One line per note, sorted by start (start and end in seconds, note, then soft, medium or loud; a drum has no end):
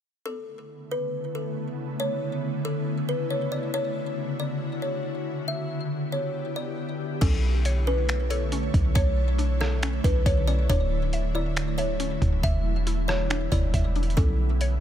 0.26 5.44 C#3 medium
0.26 7.18 D3 medium
0.26 3.70 A3 medium
0.26 3.70 B3 medium
0.26 7.18 E4 medium
0.26 0.87 A4 medium
0.91 1.32 B4 medium
1.35 1.56 A4 medium
2.00 2.61 C#5 loud
2.65 3.06 A4 medium
3.09 3.29 B4 medium
3.30 3.51 C#5 medium
3.52 3.73 D5 medium
3.74 5.46 F#4 medium
3.74 4.35 C#5 loud
4.40 4.80 D5 medium
4.82 5.03 C#5 medium
5.48 7.20 B3 medium
5.48 7.20 G4 medium
5.48 6.09 E5 medium
6.12 6.54 C#5 medium
6.56 7.18 D5 medium
7.21 8.70 B1 loud
7.21 12.39 D3 medium
7.21 10.66 A3 medium
7.21 7.86 C#4 medium
7.21 14.80 E4 medium
7.21 7.83 A4 medium
7.21 10.66 C#5 medium
7.21 kick loud
7.21 closed hi-hat medium
7.21 crash loud
7.65 8.29 C#5 loud
7.65 closed hi-hat medium
7.87 8.51 C#4 medium
7.87 8.28 B4 medium
8.09 finger snap loud
8.09 closed hi-hat medium
8.30 8.51 A4 medium
8.30 8.94 C#5 medium
8.30 closed hi-hat medium
8.52 9.82 C#4 medium
8.52 closed hi-hat medium
8.74 8.95 B1 loud
8.74 kick loud
8.74 closed hi-hat medium
8.95 10.00 B1 loud
8.95 10.25 C#5 loud
8.95 9.57 C#5 loud
8.95 kick loud
8.95 closed hi-hat medium
9.38 10.03 D4 medium
9.38 closed hi-hat medium
9.61 10.02 A4 medium
9.61 cross-stick medium
9.83 10.46 C#4 medium
9.83 finger snap loud
9.83 closed hi-hat medium
10.04 10.25 B1 loud
10.04 10.69 D4 medium
10.04 10.25 B4 medium
10.04 kick medium
10.04 closed hi-hat medium
10.26 10.68 B1 loud
10.26 10.69 C#5 medium
10.26 10.47 C#5 medium
10.26 kick medium
10.26 closed hi-hat medium
10.47 10.69 C#4 medium
10.47 10.68 D5 medium
10.47 closed hi-hat medium
10.69 12.18 D1 loud
10.69 12.42 F#3 medium
10.69 12.42 A3 medium
10.69 12.00 D4 medium
10.69 11.31 C#5 loud
10.69 kick loud
10.69 closed hi-hat medium
11.13 11.77 E5 medium
11.13 closed hi-hat medium
11.35 12.43 E4 medium
11.35 11.76 D5 medium
11.56 finger snap loud
11.56 closed hi-hat medium
11.78 11.99 C#5 medium
11.78 12.42 E5 medium
11.78 closed hi-hat medium
12.00 12.43 C#4 medium
12.00 closed hi-hat medium
12.22 12.43 D1 loud
12.22 kick loud
12.22 closed hi-hat medium
12.43 13.48 E1 loud
12.43 14.16 D3 medium
12.43 14.16 G3 medium
12.43 14.16 B3 medium
12.43 13.73 E5 loud
12.43 13.05 E5 medium
12.43 kick loud
12.43 closed hi-hat medium
12.87 13.51 E4 medium
12.87 closed hi-hat medium
13.08 13.49 C#5 medium
13.08 cross-stick medium
13.30 13.95 D4 medium
13.30 finger snap loud
13.30 closed hi-hat medium
13.52 13.73 E1 loud
13.52 14.17 E4 medium
13.52 14.13 D5 medium
13.52 kick medium
13.52 closed hi-hat medium
13.74 14.16 E1 loud
13.74 14.17 E5 medium
13.74 kick medium
13.74 closed hi-hat medium
13.96 14.17 D4 medium
13.96 closed hi-hat soft
14.03 closed hi-hat soft
14.10 closed hi-hat soft
14.17 14.80 B1 loud
14.17 14.80 D3 medium
14.17 14.80 A3 medium
14.17 14.80 B3 medium
14.17 14.80 C#4 loud
14.17 14.78 A4 medium
14.17 kick loud
14.17 closed hi-hat medium
14.61 14.80 C#5 medium
14.61 closed hi-hat medium